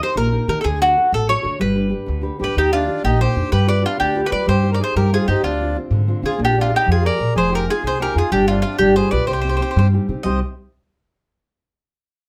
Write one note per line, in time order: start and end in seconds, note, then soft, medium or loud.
0.02 0.27 D#4 soft
0.02 0.27 G4 soft
0.02 0.28 A#4 medium
0.02 0.17 C5 medium
0.16 0.37 A#1 medium
0.16 0.48 A#3 medium
0.16 0.47 A#4 medium
0.32 0.47 D#4 medium
0.32 0.47 G4 soft
0.32 0.48 A#4 medium
0.48 0.53 D#3 medium
0.48 0.61 D#4 medium
0.48 0.61 G4 medium
0.48 0.60 A#4 medium
0.48 0.62 A#4 medium
0.61 0.96 D2 loud
0.61 0.96 D3 medium
0.61 0.79 G#4 medium
0.61 0.65 A4 medium
0.81 0.96 D4 soft
0.81 0.97 F#4 soft
0.81 1.11 F#4 loud
0.81 0.96 A4 soft
0.97 1.23 D4 soft
0.97 1.23 A4 medium
1.12 1.33 A1 medium
1.12 1.43 A3 medium
1.12 1.28 A4 loud
1.28 1.41 D4 soft
1.28 1.41 F#4 soft
1.28 1.41 A4 medium
1.28 1.59 C#5 loud
1.42 1.50 D3 medium
1.42 1.56 D4 soft
1.42 1.56 F#4 soft
1.42 1.56 A4 medium
1.59 1.92 G1 medium
1.59 1.91 G3 medium
1.59 2.21 B4 medium
1.75 1.88 D4 soft
1.75 1.89 G4 soft
1.75 1.89 B4 soft
1.89 2.16 D4 soft
1.89 2.17 G4 soft
1.89 2.17 B4 soft
2.06 2.29 D2 medium
2.06 2.39 D3 medium
2.21 2.38 D4 soft
2.21 2.38 G4 soft
2.21 2.39 B4 medium
2.39 2.46 G1 medium
2.39 2.53 D4 medium
2.39 2.53 G4 soft
2.39 2.56 G4 medium
2.39 2.53 B4 medium
2.44 2.57 B4 medium
2.55 2.88 D#2 medium
2.55 2.71 D#3 medium
2.55 2.72 D#4 medium
2.55 2.72 G4 medium
2.72 2.98 D#3 soft
2.72 2.86 D4 soft
2.72 3.03 D4 medium
2.72 3.04 F4 medium
2.72 2.86 G4 soft
2.87 3.13 D4 soft
2.87 3.13 D#4 soft
2.87 3.14 G4 soft
3.04 3.25 A#1 medium
3.04 3.35 A#3 medium
3.04 3.19 D#4 medium
3.04 3.20 G4 medium
3.19 3.35 D4 medium
3.19 3.36 D#4 soft
3.19 3.36 G4 medium
3.19 3.50 G4 medium
3.19 3.50 C5 medium
3.36 3.42 F2 medium
3.36 3.49 D4 soft
3.36 3.49 D#4 medium
3.36 3.50 G4 medium
3.52 3.83 G2 medium
3.52 3.83 G3 medium
3.52 3.67 G4 medium
3.52 3.67 B4 medium
3.67 3.81 F4 soft
3.67 3.81 G4 soft
3.67 3.83 B4 medium
3.67 3.82 B4 soft
3.67 3.83 D5 medium
3.82 3.97 D4 medium
3.82 4.08 F4 soft
3.82 3.99 F4 medium
3.82 4.09 G4 soft
3.82 4.09 B4 medium
3.98 4.21 D2 loud
3.98 4.30 D3 medium
3.98 4.21 D4 medium
3.98 4.25 G4 medium
4.15 4.29 F4 soft
4.15 4.29 G4 soft
4.15 4.30 B4 medium
4.24 4.31 G4 medium
4.24 4.32 B4 medium
4.30 4.37 G3 medium
4.30 4.43 F4 soft
4.30 4.44 G4 soft
4.30 4.44 B4 medium
4.30 4.46 B4 medium
4.30 4.47 D5 medium
4.46 4.79 G2 loud
4.46 4.78 G3 medium
4.46 4.70 G4 medium
4.46 4.71 C5 medium
4.63 4.79 D#4 soft
4.63 4.78 G4 soft
4.63 4.79 C5 soft
4.72 4.79 A#4 medium
4.72 4.81 D5 medium
4.79 5.05 D#4 soft
4.79 5.05 G4 soft
4.79 4.94 G#4 medium
4.79 5.06 C5 soft
4.84 4.96 C5 medium
4.96 5.17 G2 medium
4.96 5.27 G3 medium
4.96 5.11 G4 medium
4.96 5.11 A#4 medium
5.11 5.26 D#4 soft
5.11 5.27 F4 medium
5.11 5.27 G4 soft
5.11 5.27 G#4 medium
5.11 5.27 C5 medium
5.28 5.33 G2 medium
5.28 5.40 D#4 medium
5.28 5.43 D#4 medium
5.28 5.42 G4 medium
5.28 5.41 G4 soft
5.28 5.41 C5 medium
5.43 5.75 D2 loud
5.43 5.75 D3 medium
5.43 5.77 D4 medium
5.43 5.77 F4 medium
5.61 5.75 C4 soft
5.61 5.75 D4 soft
5.61 5.75 F4 soft
5.76 6.02 C4 soft
5.76 6.02 D4 soft
5.76 6.02 F4 medium
5.91 6.12 G#2 medium
5.91 6.23 D3 medium
6.07 6.21 C4 soft
6.07 6.22 D4 soft
6.07 6.22 F4 medium
6.22 6.29 D3 medium
6.22 6.36 C4 soft
6.22 6.36 D4 soft
6.22 6.36 F4 medium
6.22 6.40 F4 medium
6.22 6.40 G#4 medium
6.38 6.71 A#1 medium
6.38 6.53 A#3 medium
6.42 6.56 D4 medium
6.42 6.57 G4 medium
6.53 6.68 G#4 soft
6.53 6.69 A#4 soft
6.53 6.69 D5 soft
6.57 6.71 D4 medium
6.61 6.74 F4 medium
6.69 6.87 D#4 medium
6.69 6.96 G#4 soft
6.69 6.96 A#4 soft
6.69 6.96 D5 soft
6.76 6.90 G4 loud
6.86 7.09 F2 medium
6.86 7.18 F3 medium
6.90 7.04 F4 medium
6.90 7.06 G#4 medium
7.02 7.17 G#4 soft
7.02 7.17 A#4 soft
7.02 7.34 A#4 medium
7.02 7.18 D5 medium
7.02 7.37 D5 medium
7.18 7.25 A#2 medium
7.18 7.31 G#4 medium
7.18 7.32 A#4 soft
7.18 7.32 D5 medium
7.35 7.67 F1 medium
7.35 7.66 F3 medium
7.35 7.51 G#4 medium
7.35 7.53 C5 medium
7.49 7.66 D#4 soft
7.49 7.67 F4 soft
7.49 7.66 G4 medium
7.49 7.67 G#4 soft
7.55 7.68 A#4 medium
7.67 7.93 D#4 soft
7.67 7.93 F4 soft
7.67 7.83 F4 medium
7.67 7.94 G#4 medium
7.67 7.84 G#4 medium
7.83 8.04 C2 medium
7.83 8.14 C3 medium
7.83 7.98 G#4 medium
7.83 8.00 C5 medium
8.00 8.13 D#4 medium
8.00 8.14 F4 soft
8.00 8.14 G4 medium
8.00 8.13 G#4 medium
8.00 8.16 A#4 medium
8.14 8.21 F2 medium
8.14 8.27 D#4 soft
8.14 8.28 F4 soft
8.14 8.31 F4 medium
8.14 8.28 G#4 medium
8.18 8.32 G#4 medium
8.31 8.63 G1 loud
8.31 8.62 G3 medium
8.31 8.47 D4 medium
8.31 8.47 G4 medium
8.48 8.61 C4 soft
8.48 8.63 D4 medium
8.48 8.61 F4 medium
8.48 8.60 F4 soft
8.48 8.61 G4 soft
8.62 8.75 C4 soft
8.62 8.78 D4 medium
8.62 8.78 F4 medium
8.62 8.76 G4 soft
8.79 9.00 G1 loud
8.79 9.11 G3 medium
8.79 8.95 D4 medium
8.79 8.94 G4 medium
8.95 9.11 F4 medium
8.95 9.11 G4 soft
8.95 9.10 G#4 medium
8.95 9.11 B4 medium
8.95 9.11 C5 medium
9.11 9.17 B1 medium
9.11 9.25 F4 medium
9.11 9.25 G4 soft
9.11 9.26 B4 medium
9.11 9.25 B4 medium
9.11 9.26 D5 medium
9.27 9.59 C2 medium
9.27 9.60 C3 medium
9.27 9.88 G4 medium
9.27 9.32 C5 medium
9.33 9.40 C5 medium
9.41 9.59 C4 soft
9.41 9.59 D#4 soft
9.41 9.48 C5 medium
9.45 9.60 G4 soft
9.45 9.56 C5 medium
9.57 9.86 C4 soft
9.57 9.86 D#4 soft
9.57 9.61 C5 medium
9.61 9.86 G4 soft
9.61 9.70 C5 medium
9.71 9.77 C5 medium
9.76 9.97 G2 loud
9.76 10.07 G3 medium
9.76 9.86 C5 medium
9.93 10.07 C4 soft
9.93 10.07 D#4 soft
9.93 10.08 G4 medium
10.08 10.14 C3 medium
10.08 10.21 C4 soft
10.08 10.21 D#4 soft
10.08 10.22 G4 medium
10.23 10.40 C2 medium
10.23 10.39 C3 medium
10.23 10.39 G3 medium
10.23 10.40 C4 medium
10.23 10.40 D#4 soft
10.23 10.40 G4 medium
10.23 10.40 C5 medium
10.23 10.39 D#5 medium